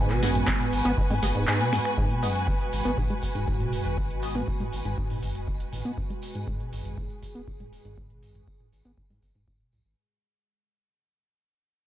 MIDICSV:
0, 0, Header, 1, 7, 480
1, 0, Start_track
1, 0, Key_signature, 5, "minor"
1, 0, Tempo, 500000
1, 1897, Time_signature, 4, 2, 24, 8
1, 11389, End_track
2, 0, Start_track
2, 0, Title_t, "String section"
2, 0, Program_c, 0, 48
2, 0, Note_on_c, 0, 66, 77
2, 0, Note_on_c, 0, 71, 88
2, 0, Note_on_c, 0, 80, 87
2, 9578, Note_off_c, 0, 71, 0
2, 9578, Note_off_c, 0, 80, 0
2, 9579, Note_off_c, 0, 66, 0
2, 11389, End_track
3, 0, Start_track
3, 0, Title_t, "Synth stab"
3, 0, Program_c, 1, 62
3, 216, Note_on_c, 1, 66, 76
3, 217, Note_on_c, 1, 59, 83
3, 217, Note_on_c, 1, 68, 77
3, 217, Note_on_c, 1, 75, 90
3, 285, Note_off_c, 1, 59, 0
3, 285, Note_off_c, 1, 66, 0
3, 285, Note_off_c, 1, 68, 0
3, 285, Note_off_c, 1, 75, 0
3, 1177, Note_on_c, 1, 59, 97
3, 1177, Note_on_c, 1, 66, 88
3, 1177, Note_on_c, 1, 68, 91
3, 1177, Note_on_c, 1, 75, 104
3, 1245, Note_off_c, 1, 59, 0
3, 1245, Note_off_c, 1, 66, 0
3, 1245, Note_off_c, 1, 68, 0
3, 1245, Note_off_c, 1, 75, 0
3, 2138, Note_on_c, 1, 59, 78
3, 2138, Note_on_c, 1, 66, 73
3, 2138, Note_on_c, 1, 68, 72
3, 2138, Note_on_c, 1, 75, 85
3, 2205, Note_off_c, 1, 68, 0
3, 2206, Note_off_c, 1, 59, 0
3, 2206, Note_off_c, 1, 66, 0
3, 2206, Note_off_c, 1, 75, 0
3, 4058, Note_on_c, 1, 59, 79
3, 4058, Note_on_c, 1, 68, 69
3, 4059, Note_on_c, 1, 66, 71
3, 4059, Note_on_c, 1, 75, 90
3, 4126, Note_off_c, 1, 59, 0
3, 4126, Note_off_c, 1, 66, 0
3, 4126, Note_off_c, 1, 68, 0
3, 4126, Note_off_c, 1, 75, 0
3, 11389, End_track
4, 0, Start_track
4, 0, Title_t, "Ambient pad"
4, 0, Program_c, 2, 92
4, 0, Note_on_c, 2, 47, 82
4, 0, Note_on_c, 2, 56, 77
4, 0, Note_on_c, 2, 59, 87
4, 1858, Note_off_c, 2, 47, 0
4, 1859, Note_off_c, 2, 56, 0
4, 1884, Note_off_c, 2, 59, 0
4, 1901, Note_on_c, 2, 56, 76
4, 1901, Note_on_c, 2, 66, 91
4, 1902, Note_on_c, 2, 47, 82
4, 5701, Note_off_c, 2, 66, 0
4, 5739, Note_on_c, 2, 68, 87
4, 9540, Note_off_c, 2, 68, 0
4, 9541, Note_off_c, 2, 47, 0
4, 9541, Note_off_c, 2, 56, 0
4, 11389, End_track
5, 0, Start_track
5, 0, Title_t, "Acid bass"
5, 0, Program_c, 3, 38
5, 0, Note_on_c, 3, 44, 86
5, 97, Note_on_c, 3, 47, 75
5, 112, Note_off_c, 3, 44, 0
5, 216, Note_on_c, 3, 42, 78
5, 230, Note_off_c, 3, 47, 0
5, 456, Note_on_c, 3, 59, 79
5, 471, Note_off_c, 3, 42, 0
5, 523, Note_off_c, 3, 59, 0
5, 817, Note_on_c, 3, 59, 110
5, 883, Note_off_c, 3, 59, 0
5, 936, Note_on_c, 3, 44, 90
5, 977, Note_off_c, 3, 44, 0
5, 1058, Note_on_c, 3, 56, 81
5, 1097, Note_off_c, 3, 56, 0
5, 1297, Note_on_c, 3, 44, 80
5, 1396, Note_off_c, 3, 44, 0
5, 1417, Note_on_c, 3, 44, 83
5, 1538, Note_on_c, 3, 47, 75
5, 1552, Note_off_c, 3, 44, 0
5, 1657, Note_on_c, 3, 42, 77
5, 1672, Note_off_c, 3, 47, 0
5, 1724, Note_off_c, 3, 42, 0
5, 1897, Note_on_c, 3, 44, 85
5, 2018, Note_on_c, 3, 47, 78
5, 2032, Note_off_c, 3, 44, 0
5, 2136, Note_on_c, 3, 42, 80
5, 2150, Note_off_c, 3, 47, 0
5, 2377, Note_on_c, 3, 59, 81
5, 2391, Note_off_c, 3, 42, 0
5, 2443, Note_off_c, 3, 59, 0
5, 2737, Note_on_c, 3, 59, 99
5, 2803, Note_off_c, 3, 59, 0
5, 2858, Note_on_c, 3, 44, 84
5, 2897, Note_off_c, 3, 44, 0
5, 2977, Note_on_c, 3, 56, 82
5, 3017, Note_off_c, 3, 56, 0
5, 3217, Note_on_c, 3, 44, 73
5, 3316, Note_off_c, 3, 44, 0
5, 3337, Note_on_c, 3, 44, 80
5, 3457, Note_on_c, 3, 47, 74
5, 3471, Note_off_c, 3, 44, 0
5, 3576, Note_on_c, 3, 42, 79
5, 3590, Note_off_c, 3, 47, 0
5, 3816, Note_on_c, 3, 59, 84
5, 3830, Note_off_c, 3, 42, 0
5, 3883, Note_off_c, 3, 59, 0
5, 4177, Note_on_c, 3, 59, 99
5, 4243, Note_off_c, 3, 59, 0
5, 4297, Note_on_c, 3, 44, 81
5, 4337, Note_off_c, 3, 44, 0
5, 4417, Note_on_c, 3, 56, 75
5, 4457, Note_off_c, 3, 56, 0
5, 4658, Note_on_c, 3, 44, 76
5, 4757, Note_off_c, 3, 44, 0
5, 4777, Note_on_c, 3, 44, 83
5, 4898, Note_on_c, 3, 47, 75
5, 4912, Note_off_c, 3, 44, 0
5, 5017, Note_on_c, 3, 42, 75
5, 5032, Note_off_c, 3, 47, 0
5, 5257, Note_on_c, 3, 59, 79
5, 5272, Note_off_c, 3, 42, 0
5, 5324, Note_off_c, 3, 59, 0
5, 5617, Note_on_c, 3, 59, 100
5, 5683, Note_off_c, 3, 59, 0
5, 5737, Note_on_c, 3, 44, 78
5, 5777, Note_off_c, 3, 44, 0
5, 5856, Note_on_c, 3, 56, 74
5, 5897, Note_off_c, 3, 56, 0
5, 6096, Note_on_c, 3, 44, 74
5, 6196, Note_off_c, 3, 44, 0
5, 6216, Note_on_c, 3, 44, 81
5, 6337, Note_on_c, 3, 47, 73
5, 6352, Note_off_c, 3, 44, 0
5, 6457, Note_on_c, 3, 42, 71
5, 6471, Note_off_c, 3, 47, 0
5, 6696, Note_on_c, 3, 59, 82
5, 6711, Note_off_c, 3, 42, 0
5, 6763, Note_off_c, 3, 59, 0
5, 7056, Note_on_c, 3, 59, 98
5, 7123, Note_off_c, 3, 59, 0
5, 7176, Note_on_c, 3, 44, 83
5, 7216, Note_off_c, 3, 44, 0
5, 7297, Note_on_c, 3, 56, 75
5, 7337, Note_off_c, 3, 56, 0
5, 7536, Note_on_c, 3, 44, 72
5, 7635, Note_off_c, 3, 44, 0
5, 7656, Note_on_c, 3, 44, 83
5, 7777, Note_on_c, 3, 47, 73
5, 7792, Note_off_c, 3, 44, 0
5, 7897, Note_on_c, 3, 42, 70
5, 7911, Note_off_c, 3, 47, 0
5, 8136, Note_on_c, 3, 59, 79
5, 8151, Note_off_c, 3, 42, 0
5, 8203, Note_off_c, 3, 59, 0
5, 8498, Note_on_c, 3, 59, 97
5, 8563, Note_off_c, 3, 59, 0
5, 8617, Note_on_c, 3, 44, 82
5, 8657, Note_off_c, 3, 44, 0
5, 8738, Note_on_c, 3, 56, 76
5, 8777, Note_off_c, 3, 56, 0
5, 8978, Note_on_c, 3, 44, 70
5, 9077, Note_off_c, 3, 44, 0
5, 9098, Note_on_c, 3, 44, 81
5, 9219, Note_on_c, 3, 47, 74
5, 9233, Note_off_c, 3, 44, 0
5, 9338, Note_on_c, 3, 42, 74
5, 9353, Note_off_c, 3, 47, 0
5, 9404, Note_off_c, 3, 42, 0
5, 11389, End_track
6, 0, Start_track
6, 0, Title_t, "Sub bass"
6, 0, Program_c, 4, 38
6, 0, Note_on_c, 4, 32, 109
6, 408, Note_off_c, 4, 32, 0
6, 696, Note_on_c, 4, 32, 99
6, 786, Note_off_c, 4, 32, 0
6, 816, Note_on_c, 4, 32, 106
6, 906, Note_off_c, 4, 32, 0
6, 1055, Note_on_c, 4, 44, 85
6, 1145, Note_off_c, 4, 44, 0
6, 1177, Note_on_c, 4, 32, 96
6, 1267, Note_off_c, 4, 32, 0
6, 1296, Note_on_c, 4, 27, 109
6, 1417, Note_off_c, 4, 27, 0
6, 2618, Note_on_c, 4, 32, 99
6, 2707, Note_off_c, 4, 32, 0
6, 2739, Note_on_c, 4, 32, 108
6, 2827, Note_off_c, 4, 32, 0
6, 2859, Note_on_c, 4, 32, 96
6, 2947, Note_off_c, 4, 32, 0
6, 3219, Note_on_c, 4, 27, 84
6, 3649, Note_off_c, 4, 27, 0
6, 3699, Note_on_c, 4, 32, 104
6, 4249, Note_off_c, 4, 32, 0
6, 4538, Note_on_c, 4, 32, 98
6, 4627, Note_off_c, 4, 32, 0
6, 4659, Note_on_c, 4, 32, 105
6, 4747, Note_off_c, 4, 32, 0
6, 4900, Note_on_c, 4, 44, 82
6, 4988, Note_off_c, 4, 44, 0
6, 5018, Note_on_c, 4, 32, 102
6, 5107, Note_off_c, 4, 32, 0
6, 5140, Note_on_c, 4, 27, 107
6, 5450, Note_off_c, 4, 27, 0
6, 5500, Note_on_c, 4, 32, 95
6, 5588, Note_off_c, 4, 32, 0
6, 6458, Note_on_c, 4, 32, 100
6, 6547, Note_off_c, 4, 32, 0
6, 6578, Note_on_c, 4, 32, 97
6, 6667, Note_off_c, 4, 32, 0
6, 6697, Note_on_c, 4, 32, 95
6, 6787, Note_off_c, 4, 32, 0
6, 7059, Note_on_c, 4, 27, 82
6, 7489, Note_off_c, 4, 27, 0
6, 7538, Note_on_c, 4, 32, 103
6, 8088, Note_off_c, 4, 32, 0
6, 8378, Note_on_c, 4, 32, 95
6, 8467, Note_off_c, 4, 32, 0
6, 8498, Note_on_c, 4, 32, 97
6, 8587, Note_off_c, 4, 32, 0
6, 8738, Note_on_c, 4, 44, 79
6, 8827, Note_off_c, 4, 44, 0
6, 8857, Note_on_c, 4, 32, 95
6, 8947, Note_off_c, 4, 32, 0
6, 8979, Note_on_c, 4, 27, 105
6, 9289, Note_off_c, 4, 27, 0
6, 9338, Note_on_c, 4, 35, 73
6, 9427, Note_off_c, 4, 35, 0
6, 9458, Note_on_c, 4, 32, 103
6, 9547, Note_off_c, 4, 32, 0
6, 11389, End_track
7, 0, Start_track
7, 0, Title_t, "Drums"
7, 94, Note_on_c, 9, 39, 39
7, 96, Note_on_c, 9, 54, 33
7, 98, Note_on_c, 9, 42, 61
7, 190, Note_off_c, 9, 39, 0
7, 192, Note_off_c, 9, 54, 0
7, 194, Note_off_c, 9, 42, 0
7, 218, Note_on_c, 9, 38, 62
7, 218, Note_on_c, 9, 46, 105
7, 221, Note_on_c, 9, 54, 91
7, 314, Note_off_c, 9, 38, 0
7, 314, Note_off_c, 9, 46, 0
7, 317, Note_off_c, 9, 54, 0
7, 334, Note_on_c, 9, 54, 41
7, 338, Note_on_c, 9, 42, 73
7, 338, Note_on_c, 9, 45, 85
7, 430, Note_off_c, 9, 54, 0
7, 434, Note_off_c, 9, 42, 0
7, 434, Note_off_c, 9, 45, 0
7, 453, Note_on_c, 9, 39, 118
7, 456, Note_on_c, 9, 36, 121
7, 457, Note_on_c, 9, 26, 63
7, 457, Note_on_c, 9, 63, 54
7, 460, Note_on_c, 9, 54, 50
7, 549, Note_off_c, 9, 39, 0
7, 552, Note_off_c, 9, 36, 0
7, 553, Note_off_c, 9, 26, 0
7, 553, Note_off_c, 9, 63, 0
7, 556, Note_off_c, 9, 54, 0
7, 578, Note_on_c, 9, 42, 38
7, 578, Note_on_c, 9, 45, 93
7, 580, Note_on_c, 9, 54, 36
7, 674, Note_off_c, 9, 42, 0
7, 674, Note_off_c, 9, 45, 0
7, 676, Note_off_c, 9, 54, 0
7, 698, Note_on_c, 9, 46, 100
7, 700, Note_on_c, 9, 54, 100
7, 794, Note_off_c, 9, 46, 0
7, 796, Note_off_c, 9, 54, 0
7, 818, Note_on_c, 9, 54, 41
7, 819, Note_on_c, 9, 42, 74
7, 914, Note_off_c, 9, 54, 0
7, 915, Note_off_c, 9, 42, 0
7, 937, Note_on_c, 9, 36, 117
7, 941, Note_on_c, 9, 54, 55
7, 1033, Note_off_c, 9, 36, 0
7, 1037, Note_off_c, 9, 54, 0
7, 1059, Note_on_c, 9, 46, 62
7, 1059, Note_on_c, 9, 63, 37
7, 1155, Note_off_c, 9, 46, 0
7, 1155, Note_off_c, 9, 63, 0
7, 1177, Note_on_c, 9, 36, 59
7, 1177, Note_on_c, 9, 54, 89
7, 1178, Note_on_c, 9, 38, 62
7, 1178, Note_on_c, 9, 46, 98
7, 1273, Note_off_c, 9, 36, 0
7, 1273, Note_off_c, 9, 54, 0
7, 1274, Note_off_c, 9, 38, 0
7, 1274, Note_off_c, 9, 46, 0
7, 1291, Note_on_c, 9, 54, 38
7, 1299, Note_on_c, 9, 42, 67
7, 1387, Note_off_c, 9, 54, 0
7, 1395, Note_off_c, 9, 42, 0
7, 1414, Note_on_c, 9, 39, 125
7, 1422, Note_on_c, 9, 54, 47
7, 1510, Note_off_c, 9, 39, 0
7, 1518, Note_off_c, 9, 54, 0
7, 1531, Note_on_c, 9, 54, 38
7, 1539, Note_on_c, 9, 42, 58
7, 1627, Note_off_c, 9, 54, 0
7, 1635, Note_off_c, 9, 42, 0
7, 1651, Note_on_c, 9, 54, 89
7, 1659, Note_on_c, 9, 26, 85
7, 1659, Note_on_c, 9, 38, 65
7, 1659, Note_on_c, 9, 45, 94
7, 1659, Note_on_c, 9, 46, 106
7, 1659, Note_on_c, 9, 63, 59
7, 1747, Note_off_c, 9, 54, 0
7, 1755, Note_off_c, 9, 26, 0
7, 1755, Note_off_c, 9, 38, 0
7, 1755, Note_off_c, 9, 45, 0
7, 1755, Note_off_c, 9, 46, 0
7, 1755, Note_off_c, 9, 63, 0
7, 1777, Note_on_c, 9, 54, 40
7, 1779, Note_on_c, 9, 26, 62
7, 1779, Note_on_c, 9, 42, 68
7, 1873, Note_off_c, 9, 54, 0
7, 1875, Note_off_c, 9, 26, 0
7, 1875, Note_off_c, 9, 42, 0
7, 1896, Note_on_c, 9, 54, 49
7, 1898, Note_on_c, 9, 36, 119
7, 1992, Note_off_c, 9, 54, 0
7, 1994, Note_off_c, 9, 36, 0
7, 2019, Note_on_c, 9, 42, 54
7, 2115, Note_off_c, 9, 42, 0
7, 2135, Note_on_c, 9, 54, 81
7, 2139, Note_on_c, 9, 46, 109
7, 2231, Note_off_c, 9, 54, 0
7, 2235, Note_off_c, 9, 46, 0
7, 2258, Note_on_c, 9, 54, 37
7, 2260, Note_on_c, 9, 42, 68
7, 2354, Note_off_c, 9, 54, 0
7, 2356, Note_off_c, 9, 42, 0
7, 2378, Note_on_c, 9, 36, 121
7, 2378, Note_on_c, 9, 54, 51
7, 2474, Note_off_c, 9, 36, 0
7, 2474, Note_off_c, 9, 54, 0
7, 2500, Note_on_c, 9, 42, 38
7, 2596, Note_off_c, 9, 42, 0
7, 2614, Note_on_c, 9, 54, 86
7, 2618, Note_on_c, 9, 46, 102
7, 2710, Note_off_c, 9, 54, 0
7, 2714, Note_off_c, 9, 46, 0
7, 2737, Note_on_c, 9, 54, 41
7, 2739, Note_on_c, 9, 42, 67
7, 2833, Note_off_c, 9, 54, 0
7, 2835, Note_off_c, 9, 42, 0
7, 2858, Note_on_c, 9, 36, 115
7, 2858, Note_on_c, 9, 45, 96
7, 2858, Note_on_c, 9, 54, 52
7, 2954, Note_off_c, 9, 36, 0
7, 2954, Note_off_c, 9, 45, 0
7, 2954, Note_off_c, 9, 54, 0
7, 2979, Note_on_c, 9, 42, 35
7, 3075, Note_off_c, 9, 42, 0
7, 3089, Note_on_c, 9, 54, 92
7, 3098, Note_on_c, 9, 36, 60
7, 3098, Note_on_c, 9, 46, 95
7, 3185, Note_off_c, 9, 54, 0
7, 3194, Note_off_c, 9, 36, 0
7, 3194, Note_off_c, 9, 46, 0
7, 3218, Note_on_c, 9, 42, 67
7, 3218, Note_on_c, 9, 54, 40
7, 3314, Note_off_c, 9, 42, 0
7, 3314, Note_off_c, 9, 54, 0
7, 3331, Note_on_c, 9, 54, 51
7, 3338, Note_on_c, 9, 36, 113
7, 3427, Note_off_c, 9, 54, 0
7, 3434, Note_off_c, 9, 36, 0
7, 3457, Note_on_c, 9, 42, 54
7, 3457, Note_on_c, 9, 45, 92
7, 3553, Note_off_c, 9, 42, 0
7, 3553, Note_off_c, 9, 45, 0
7, 3575, Note_on_c, 9, 54, 85
7, 3577, Note_on_c, 9, 46, 108
7, 3671, Note_off_c, 9, 54, 0
7, 3673, Note_off_c, 9, 46, 0
7, 3698, Note_on_c, 9, 42, 64
7, 3698, Note_on_c, 9, 54, 41
7, 3794, Note_off_c, 9, 42, 0
7, 3794, Note_off_c, 9, 54, 0
7, 3818, Note_on_c, 9, 36, 122
7, 3825, Note_on_c, 9, 54, 55
7, 3914, Note_off_c, 9, 36, 0
7, 3921, Note_off_c, 9, 54, 0
7, 3938, Note_on_c, 9, 42, 54
7, 4034, Note_off_c, 9, 42, 0
7, 4050, Note_on_c, 9, 54, 84
7, 4058, Note_on_c, 9, 46, 110
7, 4146, Note_off_c, 9, 54, 0
7, 4154, Note_off_c, 9, 46, 0
7, 4174, Note_on_c, 9, 54, 42
7, 4177, Note_on_c, 9, 42, 67
7, 4177, Note_on_c, 9, 45, 91
7, 4270, Note_off_c, 9, 54, 0
7, 4273, Note_off_c, 9, 42, 0
7, 4273, Note_off_c, 9, 45, 0
7, 4297, Note_on_c, 9, 54, 51
7, 4298, Note_on_c, 9, 36, 121
7, 4393, Note_off_c, 9, 54, 0
7, 4394, Note_off_c, 9, 36, 0
7, 4418, Note_on_c, 9, 42, 37
7, 4418, Note_on_c, 9, 45, 91
7, 4514, Note_off_c, 9, 42, 0
7, 4514, Note_off_c, 9, 45, 0
7, 4537, Note_on_c, 9, 46, 108
7, 4541, Note_on_c, 9, 54, 93
7, 4633, Note_off_c, 9, 46, 0
7, 4637, Note_off_c, 9, 54, 0
7, 4655, Note_on_c, 9, 54, 38
7, 4658, Note_on_c, 9, 42, 66
7, 4751, Note_off_c, 9, 54, 0
7, 4754, Note_off_c, 9, 42, 0
7, 4778, Note_on_c, 9, 36, 116
7, 4787, Note_on_c, 9, 54, 49
7, 4874, Note_off_c, 9, 36, 0
7, 4883, Note_off_c, 9, 54, 0
7, 4897, Note_on_c, 9, 46, 60
7, 4993, Note_off_c, 9, 46, 0
7, 5017, Note_on_c, 9, 46, 101
7, 5018, Note_on_c, 9, 36, 60
7, 5021, Note_on_c, 9, 54, 90
7, 5113, Note_off_c, 9, 46, 0
7, 5114, Note_off_c, 9, 36, 0
7, 5117, Note_off_c, 9, 54, 0
7, 5137, Note_on_c, 9, 54, 39
7, 5138, Note_on_c, 9, 42, 66
7, 5233, Note_off_c, 9, 54, 0
7, 5234, Note_off_c, 9, 42, 0
7, 5251, Note_on_c, 9, 54, 58
7, 5258, Note_on_c, 9, 36, 114
7, 5347, Note_off_c, 9, 54, 0
7, 5354, Note_off_c, 9, 36, 0
7, 5378, Note_on_c, 9, 42, 52
7, 5474, Note_off_c, 9, 42, 0
7, 5497, Note_on_c, 9, 45, 91
7, 5497, Note_on_c, 9, 46, 109
7, 5498, Note_on_c, 9, 54, 92
7, 5593, Note_off_c, 9, 45, 0
7, 5593, Note_off_c, 9, 46, 0
7, 5594, Note_off_c, 9, 54, 0
7, 5618, Note_on_c, 9, 42, 59
7, 5625, Note_on_c, 9, 54, 36
7, 5714, Note_off_c, 9, 42, 0
7, 5721, Note_off_c, 9, 54, 0
7, 5737, Note_on_c, 9, 54, 57
7, 5738, Note_on_c, 9, 36, 121
7, 5833, Note_off_c, 9, 54, 0
7, 5834, Note_off_c, 9, 36, 0
7, 5857, Note_on_c, 9, 42, 50
7, 5953, Note_off_c, 9, 42, 0
7, 5971, Note_on_c, 9, 54, 100
7, 5976, Note_on_c, 9, 46, 104
7, 6067, Note_off_c, 9, 54, 0
7, 6072, Note_off_c, 9, 46, 0
7, 6097, Note_on_c, 9, 42, 64
7, 6103, Note_on_c, 9, 54, 42
7, 6193, Note_off_c, 9, 42, 0
7, 6199, Note_off_c, 9, 54, 0
7, 6213, Note_on_c, 9, 54, 49
7, 6217, Note_on_c, 9, 36, 122
7, 6309, Note_off_c, 9, 54, 0
7, 6313, Note_off_c, 9, 36, 0
7, 6338, Note_on_c, 9, 42, 34
7, 6434, Note_off_c, 9, 42, 0
7, 6457, Note_on_c, 9, 46, 99
7, 6458, Note_on_c, 9, 54, 88
7, 6553, Note_off_c, 9, 46, 0
7, 6554, Note_off_c, 9, 54, 0
7, 6578, Note_on_c, 9, 42, 63
7, 6585, Note_on_c, 9, 54, 42
7, 6674, Note_off_c, 9, 42, 0
7, 6681, Note_off_c, 9, 54, 0
7, 6697, Note_on_c, 9, 36, 119
7, 6697, Note_on_c, 9, 45, 95
7, 6700, Note_on_c, 9, 54, 53
7, 6793, Note_off_c, 9, 36, 0
7, 6793, Note_off_c, 9, 45, 0
7, 6796, Note_off_c, 9, 54, 0
7, 6817, Note_on_c, 9, 42, 34
7, 6913, Note_off_c, 9, 42, 0
7, 6935, Note_on_c, 9, 54, 87
7, 6937, Note_on_c, 9, 36, 59
7, 6937, Note_on_c, 9, 46, 102
7, 7031, Note_off_c, 9, 54, 0
7, 7033, Note_off_c, 9, 36, 0
7, 7033, Note_off_c, 9, 46, 0
7, 7057, Note_on_c, 9, 42, 59
7, 7061, Note_on_c, 9, 54, 41
7, 7153, Note_off_c, 9, 42, 0
7, 7157, Note_off_c, 9, 54, 0
7, 7177, Note_on_c, 9, 36, 116
7, 7183, Note_on_c, 9, 54, 55
7, 7273, Note_off_c, 9, 36, 0
7, 7279, Note_off_c, 9, 54, 0
7, 7297, Note_on_c, 9, 42, 49
7, 7297, Note_on_c, 9, 45, 92
7, 7393, Note_off_c, 9, 42, 0
7, 7393, Note_off_c, 9, 45, 0
7, 7416, Note_on_c, 9, 54, 89
7, 7417, Note_on_c, 9, 46, 105
7, 7512, Note_off_c, 9, 54, 0
7, 7513, Note_off_c, 9, 46, 0
7, 7529, Note_on_c, 9, 54, 42
7, 7537, Note_on_c, 9, 42, 59
7, 7625, Note_off_c, 9, 54, 0
7, 7633, Note_off_c, 9, 42, 0
7, 7649, Note_on_c, 9, 54, 47
7, 7657, Note_on_c, 9, 36, 120
7, 7745, Note_off_c, 9, 54, 0
7, 7753, Note_off_c, 9, 36, 0
7, 7777, Note_on_c, 9, 42, 47
7, 7873, Note_off_c, 9, 42, 0
7, 7896, Note_on_c, 9, 46, 108
7, 7899, Note_on_c, 9, 54, 94
7, 7992, Note_off_c, 9, 46, 0
7, 7995, Note_off_c, 9, 54, 0
7, 8017, Note_on_c, 9, 42, 61
7, 8017, Note_on_c, 9, 45, 79
7, 8019, Note_on_c, 9, 54, 36
7, 8113, Note_off_c, 9, 42, 0
7, 8113, Note_off_c, 9, 45, 0
7, 8115, Note_off_c, 9, 54, 0
7, 8132, Note_on_c, 9, 54, 47
7, 8137, Note_on_c, 9, 36, 119
7, 8228, Note_off_c, 9, 54, 0
7, 8233, Note_off_c, 9, 36, 0
7, 8258, Note_on_c, 9, 42, 32
7, 8258, Note_on_c, 9, 45, 91
7, 8354, Note_off_c, 9, 42, 0
7, 8354, Note_off_c, 9, 45, 0
7, 8377, Note_on_c, 9, 46, 99
7, 8380, Note_on_c, 9, 54, 85
7, 8473, Note_off_c, 9, 46, 0
7, 8476, Note_off_c, 9, 54, 0
7, 8495, Note_on_c, 9, 54, 38
7, 8498, Note_on_c, 9, 42, 60
7, 8591, Note_off_c, 9, 54, 0
7, 8594, Note_off_c, 9, 42, 0
7, 8614, Note_on_c, 9, 54, 46
7, 8617, Note_on_c, 9, 36, 111
7, 8710, Note_off_c, 9, 54, 0
7, 8713, Note_off_c, 9, 36, 0
7, 8738, Note_on_c, 9, 46, 60
7, 8834, Note_off_c, 9, 46, 0
7, 8854, Note_on_c, 9, 54, 89
7, 8857, Note_on_c, 9, 36, 57
7, 8857, Note_on_c, 9, 46, 91
7, 8950, Note_off_c, 9, 54, 0
7, 8953, Note_off_c, 9, 36, 0
7, 8953, Note_off_c, 9, 46, 0
7, 8978, Note_on_c, 9, 42, 60
7, 8980, Note_on_c, 9, 54, 35
7, 9074, Note_off_c, 9, 42, 0
7, 9076, Note_off_c, 9, 54, 0
7, 9097, Note_on_c, 9, 36, 110
7, 9097, Note_on_c, 9, 54, 55
7, 9193, Note_off_c, 9, 36, 0
7, 9193, Note_off_c, 9, 54, 0
7, 9219, Note_on_c, 9, 42, 45
7, 9315, Note_off_c, 9, 42, 0
7, 9330, Note_on_c, 9, 54, 81
7, 9339, Note_on_c, 9, 45, 89
7, 9339, Note_on_c, 9, 46, 102
7, 9426, Note_off_c, 9, 54, 0
7, 9435, Note_off_c, 9, 45, 0
7, 9435, Note_off_c, 9, 46, 0
7, 9458, Note_on_c, 9, 54, 39
7, 9554, Note_off_c, 9, 54, 0
7, 11389, End_track
0, 0, End_of_file